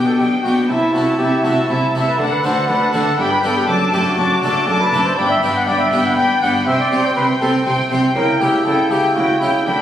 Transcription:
Already playing: B2 B3 D4 G4 G5
0.06 A4
0.18 B1 B2 D4 G4 G5
0.43 B1 B2 B3 D4 F#4 G4 G5
0.68 C2 C3 E4 E5 A5
0.93 C2 C3 A3 E4 F#4 E5 A5
1.18 C2 C3 E4 G4 E5 A5
1.43 C2 C3 A3 E4 F#4 E5 A5
1.68 C2 C3 E4 E5 A5
1.93 C2 C3 A3 E4 E5 A5
2.07 B4
2.18 D2 D3 D4 A4 F#5 A5
2.32 B4
2.43 D2 D3 A3 D4 F#4 C5 F#5 A5
2.68 D2 D3 D4 B4 F#5 A5
2.93 D2 D3 A3 D4 F#4 A4 F#5 A5
3.18 G1 G2 D4 G4 G5 B5
3.32 B4
3.42 G1 G2 B3 D4 G4 A4 G5 B5
3.57 G4
3.67 F#1 F#2 D4 A4 A5 D6
3.93 F#1 F#2 A3 D4 G4 A4 A5 D6
4.05 F#4
4.18 F#1 F#2 D4 A5 D6
4.43 F#1 F#2 A3 D4 A4 A5 D6
4.67 F#1 F#2 D4 A4 A5 D6
4.80 B4
4.92 F#1 F#2 A3 D4 A4 A5 D6
5.06 C5
5.17 G1 G2 D4 D5 G5 B5
5.30 E5
5.41 G1 G2 B3 D4 G4 G5 B5
5.56 F#5
5.66 G1 G2 D4 D5 G5 B5
5.79 E5
5.91 G1 G2 B3 D4 G4 G5 B5
6.05 F#5
6.16 G1 G2 D4 G5 B5
6.41 G1 G2 B3 D4 G4 F#5 G5 B5
6.66 C2 C3 C4 E5 G5 C6
6.79 D5
6.91 C2 C3 C4 G4 G5 C6
7.05 C5
7.16 C2 C3 C4 B4 G5 C6
7.41 C2 C3 C4 G4 A4 G5 C6
7.66 C2 C3 C4 G5 C6
7.91 C2 C3 C4 G4 G5 C6
8.15 C#2 C#3 E4 A#4 G5
8.40 C#2 C#3 E4 G4 G5
8.65 C#2 C#3 E4 A4 G5
8.91 C#2 C#3 E4 G4 G5
9.14 C#2 C#3 E4 F#4 G5
9.40 C#2 C#3 E4 G4 G5
9.66 D2 D3 D4 G5 B5

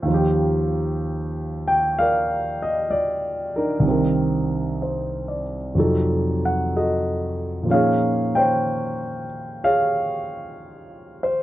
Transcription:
0.02 D#2 D#3
0.08 F3 F4
0.14 G4
1.68 G5
1.99 A#4 D5 F5
2.62 D#5
2.91 D5
3.56 D4 D#4 A#4
3.79 C2 C3
3.85 D#3 C4
3.91 A#4
4.82 C5
5.28 D5
5.75 F2 C3 F#3 D#4
5.79 A4
6.45 F#5
6.77 F#4 A4 D#5
7.63 A#2 F3
7.68 A#3 C#4 F5
7.73 D#4 G#4 C#5
8.35 C5 C#5 G5
9.64 G#4 C#5 F5
11.23 C5

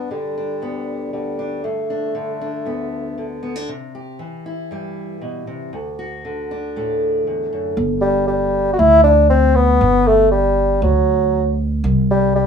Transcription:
Already playing: G2 D4
0.11 D3 G3
0.38 D4
0.62 D2 B3
1.13 D3 G3
1.39 D4
1.64 G2 A3
1.90 D4
2.15 D3
2.41 D4
2.65 D2 B3
3.18 D3
3.43 B3
3.56 D4
3.69 C3
3.95 G4
4.19 E3
4.46 E4
4.71 G2 G3
5.21 B2
5.47 C3
5.73 D2
5.99 F#4
6.25 D3
6.51 D4
6.76 A2 A3
7.27 E2
7.53 F#2
7.77 G1
8.01 G3
8.28 G3
8.74 F#4
8.79 D2 E4
9.04 D4
9.30 C4
9.55 B3
9.81 G1
10.07 A3
10.31 G3
10.82 D2 F#3
11.84 C2
12.11 G3
12.36 G3

